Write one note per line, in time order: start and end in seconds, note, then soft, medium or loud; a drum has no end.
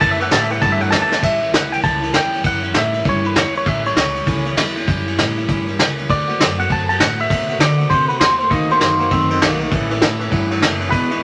0.00 0.29 F#2 medium
0.00 0.20 A2 medium
0.00 0.18 A2 medium
0.00 0.20 E3 medium
0.00 0.18 E3 medium
0.00 0.19 G3 medium
0.00 0.19 C#4 medium
0.00 0.17 E4 medium
0.00 0.11 A5 loud
0.00 kick loud
0.00 ride medium
0.11 0.21 E5 loud
0.18 0.30 A2 medium
0.18 0.31 E3 loud
0.18 0.29 G3 medium
0.18 0.31 C#4 medium
0.18 0.30 E4 medium
0.18 0.32 F#5 loud
0.18 ride medium
0.30 0.59 A2 loud
0.30 0.49 A2 medium
0.30 0.50 E3 medium
0.30 0.49 E3 loud
0.30 0.50 G3 medium
0.30 0.49 C#4 medium
0.30 0.48 E4 medium
0.30 0.42 A5 loud
0.30 snare loud
0.30 ride medium
0.42 0.51 E5 medium
0.50 0.60 A2 medium
0.50 0.61 E3 medium
0.50 0.60 G3 soft
0.50 0.60 C#4 medium
0.50 0.61 E4 medium
0.50 0.61 F#5 medium
0.50 ride medium
0.60 0.90 G2 loud
0.60 0.80 A2 medium
0.60 0.79 A2 medium
0.60 0.80 E3 loud
0.60 0.79 F#3 medium
0.60 0.79 G3 loud
0.60 0.78 C#4 medium
0.60 0.77 E4 medium
0.60 0.71 A5 loud
0.60 kick loud
0.60 ride medium
0.72 0.81 E5 loud
0.78 0.91 A2 medium
0.78 0.91 F#3 loud
0.78 0.90 G3 soft
0.78 0.91 C#4 medium
0.78 0.91 E4 medium
0.78 0.91 F#5 loud
0.78 ride medium
0.90 1.19 E2 loud
0.90 1.09 A2 medium
0.90 1.10 E3 medium
0.90 1.10 E3 loud
0.90 1.10 G3 medium
0.90 1.08 C#4 medium
0.90 1.08 E4 medium
0.90 1.01 A5 loud
0.90 snare loud
0.90 ride medium
1.02 1.22 A5 loud
1.09 1.21 A2 medium
1.09 1.21 E3 medium
1.09 1.20 G3 soft
1.09 1.20 C#4 soft
1.09 1.21 E4 medium
1.09 snare medium
1.20 1.50 A1 medium
1.20 1.41 A2 medium
1.20 1.41 E3 medium
1.20 1.41 G3 medium
1.20 1.40 C#4 medium
1.20 1.39 E4 medium
1.20 1.52 E5 loud
1.20 kick loud
1.20 crash loud
1.40 1.50 G3 soft
1.40 1.51 C#4 medium
1.40 1.52 E4 medium
1.40 ride medium
1.51 1.80 C#2 medium
1.51 1.71 E3 medium
1.51 1.71 G3 medium
1.51 1.70 C#4 medium
1.51 1.69 E4 medium
1.51 snare loud
1.51 ride medium
1.56 1.72 F#5 medium
1.70 1.82 G3 medium
1.70 1.82 C#4 medium
1.70 1.82 E4 medium
1.70 1.83 G5 medium
1.70 ride medium
1.82 2.11 C#2 loud
1.82 2.02 A2 medium
1.82 2.02 E3 medium
1.82 2.02 G3 medium
1.82 2.01 C#4 medium
1.82 2.00 E4 medium
1.82 2.15 A5 loud
1.82 kick loud
1.82 ride medium
2.02 2.13 G3 soft
2.02 2.13 C#4 soft
2.02 2.13 E4 medium
2.02 ride medium
2.13 2.41 E2 medium
2.13 2.33 E3 medium
2.13 2.33 G3 medium
2.13 2.32 C#4 medium
2.13 2.31 E4 medium
2.13 2.46 G5 medium
2.13 snare loud
2.13 ride loud
2.32 2.43 G3 soft
2.32 2.43 C#4 soft
2.32 2.43 E4 soft
2.32 ride medium
2.43 2.72 F#2 medium
2.43 2.63 A2 medium
2.43 2.63 E3 medium
2.43 2.63 G3 medium
2.43 2.62 C#4 medium
2.43 2.61 E4 medium
2.43 2.74 F#5 loud
2.43 kick loud
2.43 ride medium
2.62 2.73 G3 soft
2.62 2.74 C#4 medium
2.62 2.74 E4 medium
2.62 ride medium
2.74 3.02 A2 medium
2.74 2.94 E3 medium
2.74 2.94 G3 medium
2.74 2.93 C#4 medium
2.74 2.92 E4 medium
2.74 snare loud
2.74 ride medium
2.78 3.08 E5 medium
2.93 3.04 G3 medium
2.93 3.04 C#4 medium
2.93 3.04 E4 medium
2.93 ride medium
3.04 3.33 G2 loud
3.04 3.24 A2 medium
3.04 3.24 E3 medium
3.04 3.24 G3 loud
3.04 3.24 C#4 loud
3.04 3.22 E4 loud
3.04 kick loud
3.04 ride medium
3.09 3.26 C#5 medium
3.24 3.34 G3 soft
3.24 3.35 C#4 medium
3.24 3.35 E4 medium
3.24 3.38 B4 medium
3.24 ride medium
3.35 3.63 E2 loud
3.35 3.55 E3 medium
3.35 3.55 G3 medium
3.35 3.54 C#4 medium
3.35 3.53 E4 medium
3.35 3.56 C#5 medium
3.35 snare loud
3.35 ride medium
3.54 3.64 G3 soft
3.54 3.64 C#4 soft
3.54 3.65 E4 medium
3.54 3.67 C#5 medium
3.54 ride medium
3.64 3.94 A1 medium
3.64 3.84 A2 medium
3.64 3.85 E3 medium
3.64 3.85 G3 medium
3.64 3.84 C#4 medium
3.64 3.83 E4 loud
3.64 3.86 E5 medium
3.64 kick loud
3.64 ride medium
3.84 3.94 G3 soft
3.84 3.95 C#4 medium
3.84 3.96 E4 medium
3.84 3.97 C#5 medium
3.84 ride medium
3.95 4.24 C#2 loud
3.95 4.15 E3 medium
3.95 4.15 G3 medium
3.95 4.15 C#4 medium
3.95 4.14 E4 medium
3.95 4.54 C#5 medium
3.95 snare loud
3.95 ride medium
4.15 4.25 G3 soft
4.15 4.25 C#4 medium
4.15 4.25 E4 medium
4.15 ride medium
4.26 4.54 C#2 loud
4.26 4.45 A2 medium
4.26 4.46 E3 loud
4.26 4.46 G3 medium
4.26 4.46 C#4 loud
4.26 4.44 E4 loud
4.26 kick loud
4.26 ride medium
4.46 4.57 G3 medium
4.46 4.57 C#4 medium
4.46 4.57 E4 medium
4.46 ride medium
4.57 4.85 E2 loud
4.57 4.76 E3 medium
4.57 4.77 G3 medium
4.57 4.76 C#4 medium
4.57 4.75 E4 medium
4.57 snare loud
4.57 ride loud
4.76 4.87 G3 soft
4.76 4.87 C#4 medium
4.76 4.87 E4 medium
4.76 ride medium
4.87 5.15 F#2 medium
4.87 5.07 A2 medium
4.87 5.07 E3 medium
4.87 5.07 G3 loud
4.87 5.06 C#4 medium
4.87 5.05 E4 loud
4.87 kick loud
4.87 ride medium
5.07 5.17 G3 medium
5.07 5.18 C#4 medium
5.07 5.18 E4 medium
5.07 ride medium
5.17 5.45 A2 loud
5.17 5.37 E3 medium
5.17 5.37 G3 medium
5.17 5.37 C#4 medium
5.17 5.36 E4 medium
5.17 snare loud
5.17 ride medium
5.37 5.47 G3 medium
5.37 5.48 C#4 medium
5.37 5.48 E4 medium
5.37 ride medium
5.48 5.76 G2 medium
5.48 5.67 A2 medium
5.48 5.67 E3 loud
5.48 5.67 G3 medium
5.48 5.66 C#4 medium
5.48 5.65 E4 loud
5.48 kick loud
5.48 ride medium
5.66 5.78 G3 medium
5.66 5.78 C#4 medium
5.66 5.78 E4 medium
5.66 ride medium
5.79 6.06 C#2 loud
5.79 5.98 E3 medium
5.79 5.98 G3 medium
5.79 5.96 E4 medium
5.79 snare loud
5.79 ride medium
5.97 6.08 G3 medium
5.97 6.09 C#4 medium
5.97 6.08 E4 medium
5.97 ride medium
6.08 6.36 D2 medium
6.08 6.28 D3 medium
6.08 6.28 A3 medium
6.08 6.27 C4 medium
6.08 6.26 F#4 medium
6.08 6.60 D5 loud
6.08 kick loud
6.08 ride medium
6.27 6.39 A3 soft
6.27 6.39 C4 medium
6.27 6.38 F#4 medium
6.27 ride medium
6.39 6.67 F#2 loud
6.39 6.58 D3 medium
6.39 snare loud
6.39 ride medium
6.58 6.68 A3 soft
6.58 6.69 C4 medium
6.58 6.69 F#4 medium
6.58 6.72 F#5 loud
6.58 ride medium
6.69 6.97 F#2 loud
6.69 6.88 D3 medium
6.69 6.88 A3 medium
6.69 6.88 C4 medium
6.69 6.87 F#4 medium
6.69 6.88 A5 loud
6.69 kick loud
6.69 ride medium
6.88 6.99 A3 soft
6.88 6.99 C4 medium
6.88 6.99 F#4 medium
6.88 6.99 A5 loud
6.88 ride medium
6.99 7.27 A2 loud
6.99 7.18 D3 medium
6.99 7.19 A3 medium
6.99 7.17 C4 medium
6.99 7.16 F#4 medium
6.99 7.19 F#5 loud
6.99 snare loud
6.99 ride loud
7.17 7.29 A3 soft
7.17 7.29 C4 soft
7.17 7.29 F#4 medium
7.17 7.58 E5 loud
7.17 ride medium
7.30 7.58 B2 medium
7.30 7.49 D3 medium
7.30 7.49 A3 medium
7.30 7.48 C4 medium
7.30 7.47 F#4 medium
7.30 kick loud
7.30 ride loud
7.48 7.58 A3 soft
7.48 7.59 C4 soft
7.48 7.60 F#4 medium
7.48 ride medium
7.58 7.87 D3 medium
7.58 7.78 D3 medium
7.58 7.76 F#4 medium
7.58 7.92 D5 medium
7.58 snare loud
7.58 ride medium
7.77 7.88 A3 soft
7.77 7.89 C4 soft
7.77 7.89 F#4 medium
7.77 ride medium
7.89 8.18 C3 loud
7.89 8.09 D3 medium
7.89 8.09 A3 medium
7.89 8.08 C4 medium
7.89 8.08 F#4 medium
7.89 8.08 C5 loud
7.89 kick loud
7.89 ride medium
8.09 8.20 A3 soft
8.09 8.20 C4 soft
8.09 8.20 F#4 medium
8.09 8.20 B4 medium
8.09 ride medium
8.20 8.48 E2 loud
8.20 8.39 D3 medium
8.20 8.40 A3 medium
8.20 8.39 C4 medium
8.20 8.39 F#4 medium
8.20 8.38 C5 medium
8.20 snare loud
8.20 ride medium
8.39 8.50 A3 soft
8.39 8.50 C4 soft
8.39 8.51 F#4 medium
8.39 8.50 C5 medium
8.39 ride medium
8.50 8.78 D#2 loud
8.50 8.68 D#3 medium
8.50 8.70 D#3 medium
8.50 8.70 A3 medium
8.50 8.68 A#3 medium
8.50 8.69 C4 medium
8.50 8.69 F#4 medium
8.50 8.70 D#5 medium
8.50 kick loud
8.50 ride medium
8.70 8.79 D#3 medium
8.70 8.80 A3 soft
8.70 8.79 A#3 medium
8.70 8.81 C4 medium
8.70 8.81 F#4 medium
8.70 8.81 C5 medium
8.70 ride medium
8.80 9.08 F#2 medium
8.80 8.97 D#3 medium
8.80 9.00 D#3 medium
8.80 9.00 A3 medium
8.80 8.98 A#3 medium
8.80 8.99 C4 medium
8.80 8.98 F#4 medium
8.80 9.38 C5 medium
8.80 snare loud
8.80 ride medium
8.99 9.09 D#3 medium
8.99 9.10 A3 soft
8.99 9.10 A#3 medium
8.99 9.11 C4 medium
8.99 9.10 F#4 medium
8.99 ride medium
9.11 9.38 F#2 medium
9.11 9.28 D#3 medium
9.11 9.30 D#3 medium
9.11 9.30 A3 medium
9.11 9.28 C4 medium
9.11 9.31 C4 loud
9.11 9.29 F#4 loud
9.11 kick loud
9.11 ride medium
9.30 9.40 D#3 medium
9.30 9.40 A3 medium
9.30 9.40 C4 medium
9.30 9.41 C4 medium
9.30 9.41 F#4 medium
9.30 ride medium
9.40 9.68 B1 loud
9.40 9.60 D#3 medium
9.40 9.58 D#3 medium
9.40 9.60 A3 medium
9.40 9.59 A#3 loud
9.40 9.60 C4 medium
9.40 9.59 F#4 medium
9.40 snare loud
9.40 ride loud
9.60 9.70 D#3 medium
9.60 9.72 A3 soft
9.60 9.70 A#3 medium
9.60 9.72 C4 medium
9.60 9.71 F#4 medium
9.60 ride medium
9.71 9.99 A1 loud
9.71 9.88 A2 medium
9.71 9.91 A2 medium
9.71 9.88 E3 loud
9.71 9.91 E3 medium
9.71 9.90 G3 medium
9.71 9.90 C#4 medium
9.71 9.89 E4 loud
9.71 kick loud
9.71 ride medium
9.90 10.00 A2 medium
9.90 10.00 E3 medium
9.90 10.00 G3 medium
9.90 10.00 C#4 medium
9.90 10.01 E4 medium
9.90 ride medium
10.00 10.18 A2 medium
10.00 10.29 A2 medium
10.00 10.20 E3 medium
10.00 10.19 E3 medium
10.00 10.21 G3 medium
10.00 10.20 C#4 medium
10.00 10.19 E4 medium
10.00 snare loud
10.00 ride medium
10.20 10.29 A2 medium
10.20 10.30 E3 medium
10.20 10.30 G3 medium
10.20 10.30 C#4 medium
10.20 10.31 E4 medium
10.20 ride medium
10.30 10.59 G2 loud
10.30 10.48 A2 medium
10.30 10.50 A2 medium
10.30 10.50 E3 loud
10.30 10.48 F#3 medium
10.30 10.50 G3 medium
10.30 10.49 C#4 loud
10.30 10.49 E4 loud
10.30 kick loud
10.30 ride medium
10.50 10.59 A2 medium
10.50 10.61 F#3 medium
10.50 10.60 G3 soft
10.50 10.61 C#4 medium
10.50 10.61 E4 medium
10.50 ride medium
10.60 10.89 F#1 medium
10.60 10.78 A2 medium
10.60 10.80 E3 medium
10.60 10.79 E3 medium
10.60 10.81 G3 medium
10.60 10.81 C#4 medium
10.60 10.80 E4 medium
10.60 snare loud
10.60 ride loud
10.80 10.90 A2 medium
10.80 10.91 E3 medium
10.80 10.92 G3 medium
10.80 10.91 C#4 medium
10.80 10.91 E4 medium
10.80 ride medium
10.90 11.20 E1 medium
10.90 11.09 E2 medium
10.90 11.11 E2 medium
10.90 11.09 B2 medium
10.90 11.11 B2 medium
10.90 11.11 E3 medium
10.90 11.10 G#3 medium
10.90 11.09 D4 medium
10.90 11.09 E4 medium
10.90 11.23 B4 loud
10.90 kick loud
10.90 ride medium
11.10 11.20 E2 medium
11.10 11.21 B2 medium
11.10 11.19 E3 medium
11.10 11.20 G#3 soft
11.10 11.21 D4 medium
11.10 11.22 E4 medium
11.10 ride medium